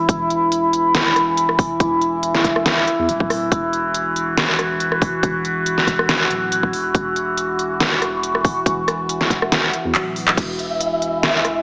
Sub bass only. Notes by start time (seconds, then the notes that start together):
0.09 E1
1.80 E1
2.99 E2
3.09 D1
3.52 E1
5.23 E1
6.30 D1
6.73 E1
6.95 E1
8.66 E1
9.85 E2
9.95 D1
10.37 E1